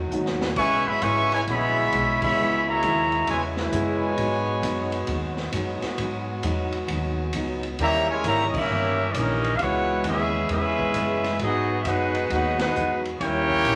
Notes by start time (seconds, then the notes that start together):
Already playing: D#3 F#3 G#3 F#4
0.11 D#2 G#2 F#3 B3 D#4, hi-hat pedal
0.26 snare
0.41 snare
0.56 C#2 C#3 E3 G#3 B3 C#4 E4 B4 E5 G#5 C#6, kick, crash
0.71 B1
0.86 G#1 E3 G#3 B3 G#4 C#5 E5 B5
1.01 G#1 C#3 E3 G#3 B3 C#4 E4 B4 E5 G#5 C#6, kick, hi-hat pedal, ride
1.31 B2 E3 G#3 E4 B4 C#5 G#5, snare, ride
1.46 A#1 C#3 E3 G#3 B3 E4 G#4 C#5 E5 B5, kick, ride
1.92 B1 C#3 G#3 B3 E4, kick, hi-hat pedal, ride
2.22 E3 G#3 B3 G#4 C#5 E5 B5, kick, crash
2.37 C#2 C#3 G#3 B3 E4
2.67 B2 A#3 E4 G#4 C#5 E5 A#5
2.82 D#2 C#3 G#3 B3 E4, kick, hi-hat pedal, ride
3.12 ride
3.27 E2 B2 C#3 E3 G#3 B3 E4 B4 C#5 G#5, kick, ride
3.57 B2 E3 G#3 E4 B4 C#5 G#5, snare
3.72 F#2 C#3 G#3 B3 E4, kick, hi-hat pedal, ride
4.17 G#2 F#3 B3 D#4 F#4, kick, ride
4.62 F#2 G#2 F#3 B3 D#4, kick, hi-hat pedal, ride
4.92 ride
5.07 D#2 G#2 F#3 B3 D#4, kick, ride
5.37 snare
5.52 F#2 G#2 F#3 B3 D#4, kick, hi-hat pedal, ride
5.82 muted upright bass stroke, snare, ride
5.98 G#2 F#3 B3 D#4, kick, ride
6.43 E2 G#2 F#3 B3 D#4, kick, hi-hat pedal, ride
6.72 ride
6.88 D#2 G#2 F#3 B3 D#4, kick, ride
7.33 C#2 G#2 F#3 B3 D#4, kick, hi-hat pedal, ride
7.63 ride
7.79 D#2 C#3 D#3 E3 G3 A#3 C#4 E4 G4 C#5 E5 A#5, kick, ride
8.10 G#3 E4 A#4 C#5 G#5
8.24 G#1 C#3 D#3 G3 A#3 C#4 E4 G4 C#5 E5 A#5, kick, hi-hat pedal, ride
8.47 D#5
8.54 A#3 C#4 E4 A#4 E5, muted upright bass stroke, kick, crash
8.58 C#4 G4
8.68 G1 D#3 G3 C#4
8.73 E4
9.11 A#1 D#3 D5, kick, hi-hat pedal, ride
9.16 G3 A#3 C#4 D#4 E4 G4 A#4 D#5
9.44 ride
9.56 C#2 C#3 G#3 B3 F5, kick, ride
9.61 G#3 B3 E4 F#4 B4 C#5 F#5
10.04 D#2 C#3 G#3 B3 C#4 E4 G#4 B4 E5, kick, hi-hat pedal, ride
10.08 G#3 B3
10.49 E2 C#3 G#3 B3 C#4 E4 G#4 B4 E5, kick, ride
10.53 E4
10.79 kick
10.94 F#2 C#3 G#3 B3 E4, kick, hi-hat pedal, ride
11.24 snare, ride
11.39 G#2 F#3 G#3 B3 D#4 F#4 G#4 D#5, kick, ride
11.82 F#2 G#2 F#3 E5, kick, hi-hat pedal, ride
11.86 B3 D#4 F#4 G#4 B4 F#5
12.15 ride
12.30 D#2 G#2 F#3 B3 D#4 F#4 G#4 B4 F#5, kick, ride
12.59 B3 D#4 F#4 G#4 B4 F#5, snare, ride
12.75 E2 G#2 F#3 B3 D#4, hi-hat pedal
13.05 ride
13.20 D#2 D#3 G3 A#3 C#4 E4 G4 A#4 C#5 G5, kick, ride
13.24 E4
13.50 kick
13.65 A#1 D#3 G3 C#4 E4, kick, hi-hat pedal, ride